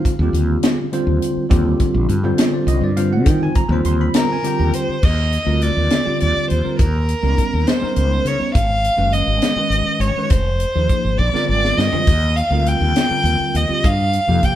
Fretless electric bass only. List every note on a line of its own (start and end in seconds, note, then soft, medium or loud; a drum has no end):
0.19 0.31 D#2 medium
0.33 0.56 D#2 medium
1.07 1.18 D#2 medium
1.37 muted fretless electric bass stroke soft
1.51 1.74 D#2 loud
1.94 2.06 A#1 medium
2.09 2.32 G2 medium
2.67 2.79 C2 medium
2.81 3.26 G2 medium
3.26 3.49 D#3 loud
3.69 3.81 D#2 loud
3.85 4.08 D#2 medium
4.59 4.71 D#2 medium
4.88 muted fretless electric bass stroke soft
5.03 5.36 D#2 medium
5.47 5.69 D2 medium
5.77 5.88 D#2 medium
6.07 muted fretless electric bass stroke soft
6.22 6.33 D#2 medium
6.37 muted fretless electric bass stroke soft
6.51 6.62 D#2 medium
6.66 muted fretless electric bass stroke soft
6.80 7.13 D#2 medium
7.23 7.34 C#2 medium
7.39 muted fretless electric bass stroke soft
7.54 7.64 D#2 medium
7.83 muted fretless electric bass stroke soft
7.97 8.19 C#2 medium
8.25 8.37 C#3 medium
8.41 muted fretless electric bass stroke soft
8.55 8.88 G#1 medium
8.98 9.21 F#1 medium
9.27 9.39 G#1 medium
9.56 muted fretless electric bass stroke soft
9.70 9.82 G#1 medium
10.00 10.12 G#1 medium
10.15 muted fretless electric bass stroke soft
10.30 10.64 F1 medium
10.76 10.87 D#2 medium
10.89 muted fretless electric bass stroke soft
11.05 11.16 G#1 medium
11.19 11.30 A#1 medium
11.49 11.71 G#1 medium
11.77 11.89 G2 medium
11.93 muted fretless electric bass stroke soft
12.07 12.41 D#2 medium
12.51 12.73 D2 medium
12.81 12.92 D#2 medium
13.10 muted fretless electric bass stroke soft
13.24 13.35 D#2 medium
13.40 muted fretless electric bass stroke soft
13.54 13.66 D#2 medium
13.69 muted fretless electric bass stroke soft
13.85 14.18 G2 medium
14.28 14.39 F2 medium